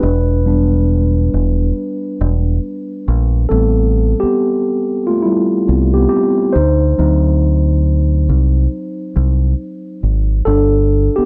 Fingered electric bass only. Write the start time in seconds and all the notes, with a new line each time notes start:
0.03 E1
1.34 E1
2.21 E1
3.08 A#1
3.51 A1
4.23 muted fingered electric bass stroke
5.69 C2
6.56 D2
6.99 D2
8.29 C2
9.16 C2
10.03 G#1
10.47 G1
11.18 muted fingered electric bass stroke